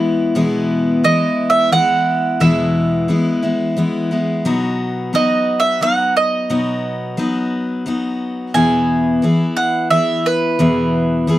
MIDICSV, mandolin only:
0, 0, Header, 1, 2, 480
1, 0, Start_track
1, 0, Key_signature, 4, "major"
1, 0, Tempo, 682594
1, 252, Time_signature, 3, 2, 24, 8
1, 8007, End_track
2, 0, Start_track
2, 0, Title_t, "Mandolin"
2, 0, Program_c, 0, 25
2, 734, Note_on_c, 0, 75, 81
2, 1054, Note_on_c, 0, 76, 79
2, 1062, Note_off_c, 0, 75, 0
2, 1201, Note_off_c, 0, 76, 0
2, 1213, Note_on_c, 0, 78, 91
2, 1695, Note_on_c, 0, 76, 75
2, 1706, Note_off_c, 0, 78, 0
2, 2384, Note_off_c, 0, 76, 0
2, 3620, Note_on_c, 0, 75, 83
2, 3936, Note_on_c, 0, 76, 84
2, 3944, Note_off_c, 0, 75, 0
2, 4093, Note_off_c, 0, 76, 0
2, 4096, Note_on_c, 0, 78, 90
2, 4316, Note_off_c, 0, 78, 0
2, 4336, Note_on_c, 0, 75, 79
2, 5745, Note_off_c, 0, 75, 0
2, 6008, Note_on_c, 0, 80, 85
2, 6701, Note_off_c, 0, 80, 0
2, 6726, Note_on_c, 0, 78, 78
2, 6962, Note_off_c, 0, 78, 0
2, 6965, Note_on_c, 0, 76, 77
2, 7215, Note_off_c, 0, 76, 0
2, 7215, Note_on_c, 0, 71, 76
2, 8007, Note_off_c, 0, 71, 0
2, 8007, End_track
0, 0, End_of_file